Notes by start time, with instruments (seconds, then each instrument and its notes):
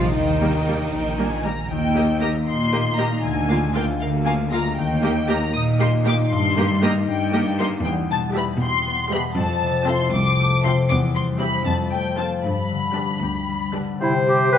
Already playing: harp D#3 G#3 D4 G#4, cello section F3, violin section F4 F5
0.02 harp A#3
0.07 harp D#4
0.11 double bass section D#2, cello section D#3, violin section D#4, harp G4
0.16 violin section G5
0.41 viola section G3 A#3
0.67 viola section G3 A#3
0.92 double bass section A#1, violin section G5
1.19 viola section G3 A#3, violin section G#5
1.44 viola section G3 A#3, violin section A#5
1.70 cello section D#2, harp D#3, violin section G5
1.96 viola section A#3 G4, harp A#3, violin section A#4 D#5
2.20 viola section A#3 G4, violin section A#4 D#5 A#5, harp A#4
2.47 cello section A#2, harp D#4, violin section C6
2.72 viola section A#3 G4, harp A#3, violin section A#4 D#5
2.97 viola section A#3 G4, harp D#4, violin section A#4 D#5 A#5
3.23 cello section D2, harp D3, violin section G#5
3.49 harp G#3, viola section A#3 F4, violin section A#4 F5
3.74 viola section A#3 F4, harp F4, violin section A#4 F5 G5
4.01 cello section D2, harp A#4, violin section F5
4.25 viola section A#3 F4, harp A#3, violin section A#4 F5 G#5
4.51 harp G#3, viola section A#3 F4, violin section A#4 F5 A#5
4.78 cello section D#2, harp D#3, violin section G5
5.02 viola section A#3 G4, harp A#3, violin section A#4 D#5
5.28 viola section A#3 G4, violin section A#4 D#5 A#5, harp A#4
5.54 cello section A#2, harp D#4, violin section D#6
5.80 viola section A#3 G4, harp A#3, violin section A#4 D#5 C6
6.05 viola section A#3 G4, harp D#4, violin section A#4 D#5 D6
6.32 cello section G2, harp G2, violin section C6
6.56 harp G3, viola section A#3 G4, violin section A#4 D#5
6.82 viola section A#3 G4, harp D#4, violin section A#4 D#5 A#5
7.08 cello section G2, harp G4, violin section G5
7.33 viola section A#3 G4, harp A#3, violin section A#4 D#5
7.59 harp G3, viola section A#3 G4, violin section A#4 D#5 C6
7.85 cello section E2, harp E2, violin section G5
8.10 harp B2, violin section A5
8.35 viola section G3 G4, harp E4, violin section B4 E5 B5
8.61 cello section B2, harp G4, violin section C6
8.87 harp B3
9.11 harp B2, viola section G3 G4, violin section B4 E5 B5
9.37 cello section F2, harp F2, violin section A5
9.62 harp C3
9.87 viola section C4 F4, harp E4, violin section A4 E5 C6
10.14 cello section C2, harp C5, violin section D6
10.40 harp A3
10.64 harp C3, viola section C4 F4, violin section A4 E5 C6
10.90 cello section E2, harp E2, violin section D6
11.15 harp G3, violin section C6
11.40 viola section C4 G4, violin section G4 E5 B5, harp G4 C5
11.67 cello section F2, harp F2, violin section A5
11.92 harp A3, violin section G5
12.17 viola section C4 F4, harp F4 C5, violin section A4 C5 A5
12.44 harp G2, cello section G2, violin section B5
12.71 harp D3
12.95 viola section G3 D4, harp D4, violin section G4 B4
13.22 cello section D2, harp G4
13.49 harp G3
13.74 harp D3, viola section G3 D4, violin section G4 B4
14.00 harp C3, bassoon C3, clarinet E4, oboe C5, flute section G5
14.27 harp C4, clarinet G4
14.52 harp G4, clarinet B4